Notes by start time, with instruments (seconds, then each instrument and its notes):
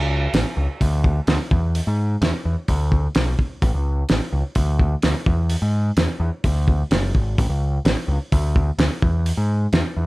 Already playing: picked electric bass C#2
0.34 picked electric bass A1, snare, open hi-hat
0.57 picked electric bass C#2
0.81 picked electric bass D2, kick, open hi-hat
1.04 kick
1.27 picked electric bass D2, snare, open hi-hat
1.51 picked electric bass E2, kick
1.75 open hi-hat
1.87 picked electric bass G#2
2.22 picked electric bass E2, snare, open hi-hat
2.45 picked electric bass E2
2.68 picked electric bass D2, kick, open hi-hat
2.92 kick
3.15 picked electric bass B1, snare, open hi-hat
3.39 kick
3.62 picked electric bass A1, kick, open hi-hat
3.74 picked electric bass C#2
4.09 picked electric bass A1, snare, open hi-hat
4.33 picked electric bass C#2
4.55 picked electric bass D2, kick, open hi-hat
4.79 kick
5.02 picked electric bass D2, snare, open hi-hat
5.26 picked electric bass E2, kick
5.50 open hi-hat
5.62 picked electric bass G#2
5.97 picked electric bass E2, snare, open hi-hat
6.20 picked electric bass E2
6.44 picked electric bass D2, kick, open hi-hat
6.68 kick
6.91 picked electric bass F#1, snare, open hi-hat
7.15 picked electric bass G#1, kick
7.38 picked electric bass A1, kick, open hi-hat
7.49 picked electric bass C#2
7.85 picked electric bass A1, snare, open hi-hat
8.08 picked electric bass C#2
8.32 picked electric bass D2, kick, open hi-hat
8.56 kick
8.78 picked electric bass D2, snare, open hi-hat
9.02 picked electric bass E2, kick
9.26 open hi-hat
9.37 picked electric bass G#2
9.73 picked electric bass E2, snare, open hi-hat
9.97 picked electric bass E2